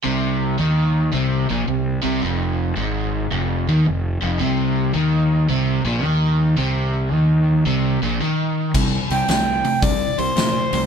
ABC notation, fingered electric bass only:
X:1
M:4/4
L:1/8
Q:"Swing" 1/4=110
K:Bblyd
V:1 name="Fingered electric bass" clef=bass
C,,2 _E,,2 C,, B,,, C,, C,, | F,,,2 _A,,,2 F,,, _E,, F,,, F,,, | C,,2 _E,,2 C,, B,,, E,,2 | C,,2 _E,,2 C,, B,,, z2 |
C,, C,, C,,2 C,, C,, B,, C,, |]